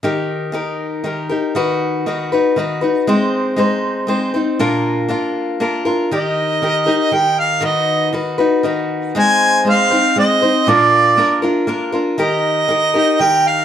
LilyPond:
<<
  \new Staff \with { instrumentName = "Harmonica" } { \time 3/4 \key ees \major \tempo 4 = 118 r2. | r2. | r2. | r2. |
ees''2 g''8 f''8 | dis''4 r2 | aes''4 f''4 ees''4 | d''4. r4. |
ees''2 g''8 f''8 | }
  \new Staff \with { instrumentName = "Steel-string acoustic guitar" } { \time 3/4 \key ees \major <ees ees' g' bes'>4 <ees ees' g' bes'>4 <ees ees' g' bes'>8 <ees' g' bes'>8 | <dis dis' fis' b'>4 <dis dis' fis' b'>8 <dis' fis' b'>8 <dis dis' fis' b'>8 <dis' fis' b'>8 | <aes c' ees' c''>4 <aes c' ees' c''>4 <aes c' ees' c''>8 <c' ees' c''>8 | <bes, bes d' f' bes'>4 <bes d' f' bes'>4 <bes d' f' bes'>8 <d' f' bes'>8 |
<ees ees' g' bes'>4 <ees ees' g' bes'>8 <ees' g' bes'>8 <ees ees' g' bes'>4 | <dis dis' fis' b'>4 <dis dis' fis' b'>8 <dis' fis' b'>8 <dis dis' fis' b'>4 | <aes c' ees' c''>4 <aes c' ees' c''>8 <c' ees' c''>8 <aes c' ees' c''>8 <c' ees' c''>8 | <bes, bes d' f' bes'>4 <bes d' f' bes'>8 <d' f' bes'>8 <bes d' f' bes'>8 <d' f' bes'>8 |
<ees ees' g' bes'>4 <ees ees' g' bes'>8 <ees' g' bes'>8 <ees ees' g' bes'>4 | }
>>